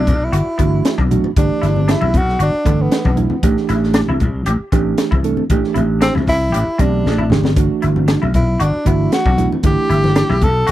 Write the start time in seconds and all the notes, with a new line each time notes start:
Already playing: D4 E4
0.07 B1, kick, closed hi-hat, low conga
0.24 E4
0.32 G1 F#4, closed hi-hat
0.58 G1 E3 A3 B3 D4 F#4, kick, closed hi-hat
0.85 snare, closed hi-hat
0.98 B1 D4, kick, high conga
1.10 E3 A3 D4 F#4, closed hi-hat, low conga
1.24 muted slap bass stroke, high conga
1.36 G1 E3 A3 D4 G4, kick, closed hi-hat
1.62 G1 E4, snare, closed hi-hat
1.76 high conga
1.88 D4 E4, snare, closed hi-hat
2.01 B1 E4, high conga
2.14 B1 F#4, kick, closed hi-hat, low conga
2.29 snare
2.39 G1 D4 F#4, closed hi-hat
2.65 G1 E3 A3 B3 D4 A4, kick, closed hi-hat
2.82 B3
2.92 snare, closed hi-hat
3.05 B1 D4, kick, high conga
3.15 E3 A3 D4 E4, closed hi-hat, low conga
3.30 muted slap bass stroke, high conga
3.43 A1 E3 A3 D4 G4, kick, closed hi-hat
3.57 snare
3.69 A1 E4, snare, closed hi-hat
3.83 snare
3.94 D4, snare, closed hi-hat
4.08 C2 E4, high conga
4.20 C2, kick, closed hi-hat, low conga
4.46 A1 G4, closed hi-hat
4.60 muted slap bass stroke
4.72 A1 E3 A3 C4 D4 G4, kick, closed hi-hat
4.98 snare, closed hi-hat
5.11 C2 E4, kick, high conga
5.24 E3 A3 D4 A4, closed hi-hat
5.37 muted slap bass stroke, high conga
5.50 A1 E3 A3 D4 G4, kick, closed hi-hat
5.64 snare
5.74 A1 E4, closed hi-hat, high conga
6.01 C4 D4, snare, closed hi-hat
6.15 C2 E4, snare, high conga
6.27 C2 E4, kick, open hi-hat, low conga
6.52 A1 G4, closed hi-hat
6.68 muted slap bass stroke
6.78 B1 E3 A3 C4 D4 G4, kick, closed hi-hat
7.06 A1, snare
7.18 E4, high conga
7.30 G1 E3 A3 D4 G4, snare, low conga
7.44 snare, high conga
7.56 G1 E3 A3 D4 F#4, kick, closed hi-hat
7.82 G1 E4, closed hi-hat
7.96 high conga
8.08 D4, snare, closed hi-hat
8.22 B1 E4, high conga
8.34 B1 E4, kick, closed hi-hat, low conga
8.60 G1 D4 F#4, closed hi-hat
8.76 muted slap bass stroke
8.85 G1 E3 A3 B3 D4 E4 F#4, kick, closed hi-hat
9.12 F#4, snare, closed hi-hat
9.26 B1 D4, kick, high conga
9.37 E3 A3 D4 E4, closed hi-hat, low conga
9.52 muted slap bass stroke, high conga
9.63 G1 E3 A3 D4 E4 G4, kick, closed hi-hat
9.90 G1 E4, closed hi-hat
10.04 snare, high conga
10.16 D4, snare, closed hi-hat
10.30 B1 E4, snare, high conga
10.41 B1 A4, kick, closed hi-hat, low conga
10.67 G1 F#4, closed hi-hat